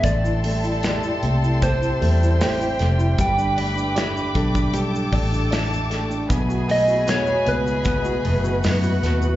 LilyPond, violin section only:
\new Staff \with { instrumentName = "Violin section" } { \time 4/4 \key a \minor \tempo 4 = 77 <a' a''>2. <g' g''>4 | <b' b''>2 <a' a''>2 | <gis' gis''>2. <fis' fis''>4 | }